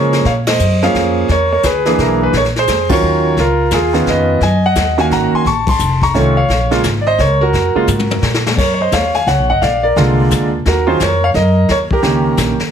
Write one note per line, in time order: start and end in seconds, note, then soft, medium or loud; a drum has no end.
0.00 0.19 C#3 medium
0.00 0.22 F3 medium
0.00 0.22 G#3 medium
0.00 0.22 A#3 medium
0.00 0.22 C#4 medium
0.00 0.22 G#4 medium
0.00 0.24 A#4 medium
0.00 0.26 C#5 medium
0.13 snare soft
0.25 0.58 A#2 medium
0.25 0.33 C#5 medium
0.25 0.31 F5 medium
0.25 brush sweep soft
0.25 kick soft
0.25 snare soft
0.46 0.80 C5 medium
0.46 0.83 D#5 medium
0.46 snare medium
0.46 ride medium
0.59 0.93 F#2 medium
0.59 hi-hat pedal medium
0.82 1.27 F3 medium
0.82 1.27 A#3 medium
0.82 1.27 C#4 medium
0.82 1.27 G#4 medium
0.82 1.28 C#5 medium
0.82 1.27 F5 medium
0.82 snare soft
0.94 1.28 F2 medium
0.94 kick soft
0.94 snare soft
1.28 1.62 E2 medium
1.28 1.51 A#4 medium
1.28 1.51 C#5 medium
1.28 brush sweep soft
1.28 kick soft
1.28 snare soft
1.52 1.64 A#4 medium
1.52 1.65 C#5 medium
1.63 1.97 D2 medium
1.63 1.85 G#4 medium
1.63 1.96 B4 medium
1.63 kick soft
1.63 snare medium
1.63 hi-hat pedal medium
1.85 2.31 E3 medium
1.85 2.31 A#3 medium
1.85 2.31 D4 medium
1.85 2.22 G#4 medium
1.85 snare soft
1.98 2.32 B1 medium
1.98 2.20 E4 medium
1.98 2.22 A#4 medium
1.98 kick soft
1.98 snare soft
2.23 2.34 G#4 medium
2.23 2.34 B4 medium
2.33 2.67 A#1 medium
2.33 brush sweep soft
2.33 kick soft
2.33 snare soft
2.37 2.43 A#4 medium
2.37 2.42 C#5 medium
2.44 snare soft
2.56 2.89 G#4 medium
2.56 2.93 C5 medium
2.56 snare soft
2.67 3.01 F2 medium
2.67 kick soft
2.67 snare medium
2.67 hi-hat pedal medium
2.89 3.35 D#3 medium
2.89 3.35 F#3 medium
2.89 3.35 C#4 medium
2.89 3.35 F4 medium
2.89 3.40 C#5 medium
2.89 kick medium
2.89 crash medium
2.93 3.36 A#4 medium
3.02 3.36 D#2 medium
3.37 3.70 C#2 medium
3.37 3.71 F4 medium
3.37 3.74 A#4 medium
3.37 brush sweep soft
3.37 kick soft
3.37 snare soft
3.71 4.05 D#2 medium
3.71 3.93 F4 medium
3.71 4.08 G#4 medium
3.71 kick soft
3.71 snare medium
3.71 hi-hat pedal medium
3.93 4.38 D#3 medium
3.93 4.39 B3 medium
3.93 4.39 C#4 medium
3.93 4.39 F4 medium
3.93 snare soft
4.06 4.40 F2 medium
4.06 4.42 D#5 medium
4.06 kick soft
4.06 snare soft
4.10 4.41 B4 medium
4.40 4.74 F#2 medium
4.40 4.63 D#5 medium
4.40 4.65 G#5 medium
4.40 brush sweep soft
4.40 kick soft
4.40 snare soft
4.66 4.97 D#5 medium
4.66 5.00 F#5 medium
4.75 5.09 D#2 medium
4.75 kick soft
4.75 snare medium
4.75 hi-hat pedal medium
4.98 5.43 D#3 medium
4.98 5.43 A#3 medium
4.98 5.43 C#4 medium
4.98 5.43 F#4 medium
4.98 5.06 F5 medium
4.98 5.05 G#5 loud
4.98 snare soft
5.10 5.31 G#1 medium
5.10 5.32 F#5 medium
5.10 5.32 A#5 loud
5.10 kick soft
5.10 snare soft
5.32 5.46 G#5 medium
5.32 5.47 C6 medium
5.32 muted upright bass stroke soft
5.45 5.79 A1 medium
5.45 5.67 A5 medium
5.45 5.69 C#6 medium
5.45 brush sweep soft
5.45 kick soft
5.45 snare soft
5.67 6.01 A5 medium
5.67 6.00 C6 medium
5.67 kick medium
5.67 crash medium
5.79 6.13 F1 medium
5.79 hi-hat pedal medium
6.02 6.14 A#5 medium
6.02 6.16 C#6 loud
6.02 kick soft
6.02 snare soft
6.14 6.48 C2 medium
6.14 6.34 D#3 medium
6.14 6.34 A3 medium
6.14 6.34 C#4 medium
6.14 6.34 F4 medium
6.14 6.36 A4 medium
6.14 6.35 C#5 medium
6.14 kick soft
6.14 snare soft
6.37 6.81 C#5 medium
6.37 6.81 F5 medium
6.49 6.82 A#1 medium
6.49 brush sweep soft
6.49 kick soft
6.49 snare soft
6.71 6.83 C#3 medium
6.71 6.83 G#3 medium
6.71 6.83 A#3 medium
6.71 6.83 F4 medium
6.71 snare soft
6.83 7.17 G#1 medium
6.83 kick soft
6.83 snare medium
6.83 hi-hat pedal medium
7.01 7.06 D5 medium
7.07 7.18 C5 medium
7.07 7.19 D#5 loud
7.18 7.52 C#2 medium
7.18 7.40 A#4 medium
7.18 7.42 C#5 medium
7.18 kick soft
7.18 snare soft
7.41 8.42 F#4 medium
7.41 8.41 A#4 medium
7.53 7.73 F2 medium
7.53 brush sweep soft
7.53 kick soft
7.53 snare soft
7.74 7.87 C#3 medium
7.74 7.87 G#3 medium
7.74 7.87 A#3 medium
7.74 7.87 F4 medium
7.74 muted upright bass stroke soft
7.87 8.21 G#2 medium
7.87 hi-hat pedal medium
7.87 high tom soft
7.99 high tom medium
8.11 high tom medium
8.22 8.56 A#2 medium
8.22 snare medium
8.34 snare medium
8.46 snare medium
8.57 8.91 F#2 medium
8.57 8.74 A#4 medium
8.57 8.73 C#5 medium
8.57 brush sweep soft
8.57 kick medium
8.57 snare soft
8.57 crash medium
8.74 8.79 C#5 medium
8.81 8.92 C5 medium
8.81 8.92 D#5 medium
8.92 9.25 D#2 medium
8.92 9.14 C#5 medium
8.92 9.14 F5 medium
8.92 kick soft
8.92 snare medium
8.92 hi-hat pedal soft
9.14 9.27 F5 medium
9.14 9.27 G#5 medium
9.14 snare soft
9.27 9.38 C#2 medium
9.27 9.48 C#5 medium
9.27 9.47 F#5 medium
9.27 kick soft
9.27 snare soft
9.38 9.49 A#1 medium
9.50 9.60 F#1 medium
9.50 9.61 D#5 medium
9.50 9.62 F#5 medium
9.62 9.95 A#1 medium
9.62 9.82 D5 medium
9.62 9.84 F5 medium
9.62 brush sweep medium
9.62 kick soft
9.62 snare soft
9.83 10.49 A#4 medium
9.83 10.48 D5 medium
9.96 10.30 C2 medium
9.96 10.48 D3 medium
9.96 10.48 G#3 medium
9.96 10.48 A#3 medium
9.96 10.49 F4 medium
9.96 kick soft
9.96 snare soft
10.30 10.64 D2 medium
10.30 kick soft
10.30 snare medium
10.30 hi-hat pedal medium
10.65 10.99 D#2 medium
10.65 10.87 F#4 medium
10.65 10.87 A#4 medium
10.65 brush sweep soft
10.65 kick soft
10.65 snare soft
10.87 10.98 D#3 medium
10.87 10.98 F#3 medium
10.87 10.99 C#4 medium
10.87 10.98 F4 medium
10.87 11.00 G#4 medium
10.87 11.00 C5 medium
11.00 11.33 F2 medium
11.00 11.22 A#4 medium
11.00 11.23 C#5 medium
11.00 kick soft
11.00 snare medium
11.00 hi-hat pedal medium
11.24 11.29 C#5 medium
11.24 11.29 F5 medium
11.34 11.68 F#2 medium
11.34 11.67 A#4 medium
11.34 11.67 D#5 medium
11.34 kick soft
11.34 snare soft
11.69 12.02 D#2 medium
11.69 11.76 A#4 medium
11.69 11.76 C#5 medium
11.69 brush sweep soft
11.69 kick soft
11.69 snare medium
11.91 12.01 G4 medium
11.91 12.57 A#4 medium
11.91 kick medium
12.02 12.37 C#2 medium
12.02 12.55 D#3 medium
12.02 12.55 A#3 medium
12.02 12.55 C#4 medium
12.02 12.55 G4 medium
12.02 kick soft
12.02 snare soft
12.37 12.58 A#1 medium
12.37 kick soft
12.37 snare medium
12.37 hi-hat pedal medium
12.59 muted upright bass stroke soft
12.59 snare soft